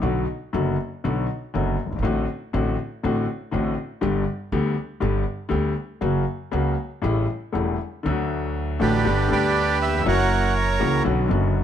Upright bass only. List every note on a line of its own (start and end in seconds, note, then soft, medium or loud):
0.03 0.24 B1 medium
0.54 0.76 F#1 medium
1.05 1.26 B1 medium
1.55 1.76 F#1 medium
1.86 1.92 F#1 soft
1.92 1.98 G1 medium
1.99 2.04 G#1 medium
2.05 2.25 A1 loud
2.54 2.75 A1 loud
3.05 3.25 A1 medium
3.54 3.74 A1 medium
4.03 4.24 G1 loud
4.52 4.73 D2 medium
5.02 5.23 G1 medium
5.51 5.73 D2 medium
6.02 6.23 F#1 medium
6.53 6.74 C#2 medium
7.04 7.25 A1 loud
7.55 7.76 E1 medium
8.06 8.77 D2 medium
8.81 9.02 A1 loud
9.07 9.28 G1 loud
9.32 10.03 D2 medium
10.06 10.77 F#1 loud
10.81 11.02 C#2 loud
11.06 11.27 B1 loud
11.31 11.64 F#1 loud